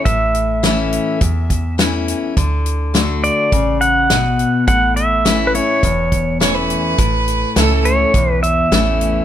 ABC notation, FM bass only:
X:1
M:4/4
L:1/8
Q:1/4=104
K:A
V:1 name="FM bass" clef=bass
A,,,4 E,,4 | D,,4 A,,,4 | A,,,4 E,,,4 | A,,,2 C,,2 B,,,2 A,,,2 |]